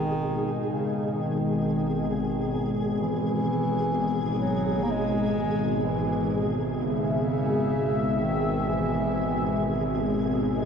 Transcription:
Already playing: synth drone G#1, analog synth pad B2 G#3 D#4, bass clarinet D#3, synth texture G#4
0.70 bass clarinet C#3
1.15 bass clarinet D#3
2.10 bass clarinet D#3
2.15 bass clarinet C#3
2.21 bass clarinet D#3
3.01 bass clarinet E3
4.41 bass clarinet F#3
4.83 bass clarinet A#3
4.91 bass clarinet G#3
5.85 bass clarinet E3
6.40 analog synth pad E5
6.79 bass clarinet C#3
8.22 bass clarinet D#3
8.69 bass clarinet E3
10.55 bass clarinet G#3, synth texture G#4

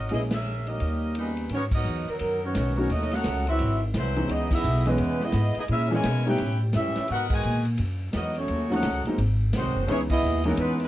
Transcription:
Already playing: saxophone section C#4 F#4 A#4 D#5
0.09 upright bass A#1, grand piano G#3 A#3 C#4 E4 G#4, saxophone section B3 E4 D#5, ride
0.13 saxophone section G#4
0.31 saxophone section G#4, snare, ride
0.35 saxophone section C#4 A#4 E5
0.44 hi-hat pedal
0.66 trombone section G3 A#3 D#4, saxophone section C#4 G4 A#4 D#5, ride
0.80 upright bass D#2, ride
1.15 trombone section C#3 G3 B3, saxophone section D#4, hi-hat pedal, ride
1.19 saxophone section G3 C#4 B4
1.37 ride
1.49 upright bass G#2, trombone section D#3 F#3 C#4, ride
1.54 saxophone section B3 F#4 A#4 C#5
1.71 trombone section F#3 B3 D#4, saxophone section B3 A#4 D#5, kick, crash
1.76 saxophone section F#4
1.85 upright bass E2, hi-hat pedal
2.08 trombone section D#3 F#3 A#4, saxophone section F#3 B3 D#4 A#4, muted upright bass stroke
2.19 upright bass F#2, ride
2.43 trombone section D#3 F#3 C#4, saxophone section B3 F#4 A#4 C#5
2.55 upright bass B1, snare, hi-hat pedal, ride
2.77 trombone section D#3 F#3 C#4, grand piano F#3 A3 C#4 D#4 F#4, saxophone section B3 F#4 A#4 C#5
2.90 upright bass D#2, trombone section F#3 A3 D#4, saxophone section C#4 F#4 A4 D#5, ride
3.01 snare
3.11 trombone section A3 C#4 F#4, saxophone section D#4 A4 C#5 F#5, snare, ride
3.24 upright bass C#2, snare, hi-hat pedal, ride
3.47 trombone section F#3 C4 E4, saxophone section C4 F#4 B4 E5, ride
3.59 upright bass G#1, ride
3.94 upright bass C2, trombone section E3 F#3 C4, saxophone section F#3, snare, hi-hat pedal, ride
3.98 saxophone section E4 B4 C5
4.16 grand piano E3 G#3 B3 C#4 D#4, ride
4.28 upright bass C#2, trombone section G#3 B3 D#4, saxophone section B3 G#4 D#5, ride
4.32 saxophone section E4
4.51 trombone section G#3 B3 E4, saxophone section B3 G#4 E5, kick, crash
4.55 saxophone section D#5
4.64 upright bass B1, hi-hat pedal
4.85 grand piano E3 G#3 B3 C#4 D#5, trombone section E3 G#3 B3, saxophone section G#3 B4, ride
4.89 saxophone section D#4 E4
4.98 upright bass E2, ride
5.20 trombone section G#3 B3 E4, saxophone section B3 E4 G#4 D#5, snare
5.32 upright bass G#2, snare, hi-hat pedal, ride
5.55 trombone section G#3 B3 D#4, muted upright bass stroke, ride
5.59 saxophone section B3 E4 G#4 D#5
5.68 upright bass A#2, trombone section G#3 C#4 E4, saxophone section A#4, ride
5.72 saxophone section C#4 G#4 E5
5.90 trombone section C#3 E3 G#3, grand piano E3 G#3 A#3 C#4 E4, saxophone section A#4
5.94 saxophone section E4 C#5 G#5
6.03 upright bass B2, snare, hi-hat pedal, ride
6.26 grand piano G3 A3 B3 C#4 D#4, trombone section C#4 E4 G4, saxophone section E4 B4 C#5 G5
6.38 upright bass A2, ride
6.73 upright bass F#2, trombone section G3 C#4 E4, saxophone section E5, snare, hi-hat pedal, ride
6.77 saxophone section C#4 G4 B4
6.96 muted upright bass stroke, snare, ride
7.08 upright bass G#2, trombone section B3 D#4 F#4, ride
7.12 saxophone section D#4 A#4 B4 F#5
7.30 trombone section B2 D#3 G#3, kick, crash
7.34 saxophone section F#4 B4 D#5 G#5
7.42 upright bass A#2, hi-hat pedal
7.65 ride
7.78 upright bass F#2, ride
8.11 upright bass E2, trombone section F#3 B3 D#4, snare, hi-hat pedal, ride
8.16 saxophone section B3 F#4 A#4 D#5
8.34 trombone section F#3 A3 C#4, saxophone section C#5, ride
8.38 saxophone section A3 D#4 F#4
8.48 upright bass D#2, ride
8.69 grand piano F3 F#3 A3 C#4 D#4, trombone section A3 C#4 F#4, saxophone section D#4 A4, snare
8.73 saxophone section C#5 F#5
8.83 upright bass C#2, snare, hi-hat pedal, ride
9.05 grand piano F#3 G#3 A#3 C4 D#4, muted upright bass stroke, ride
9.18 upright bass G#1, ride
9.53 upright bass C2, trombone section D#3 F#3 C4, snare, hi-hat pedal, ride
9.57 saxophone section G#3 D#4 F#4 C5
9.65 upright bass G#1
9.76 upright bass F#1
9.87 upright bass C#2, trombone section E3 G#3 C#4, grand piano E3 G#3 B3 C#4 D#4, saxophone section B3 E4 G#4 C#5, ride
10.10 trombone section G#3 B3 E4, saxophone section B3 E4 G#4 D#5, kick, crash
10.22 upright bass D#2, hi-hat pedal
10.44 grand piano E3 G#3 B3 C#4 D#4, saxophone section F#3 B3 A#4, trombone section A#3, ride
10.48 saxophone section D#4
10.57 upright bass E2, trombone section E3 G#3 B3, saxophone section G#3 D#4 E4 B4, ride
10.80 trombone section E3 G#3 B3, saxophone section D#4 E4 B4, ride
10.84 saxophone section G#3

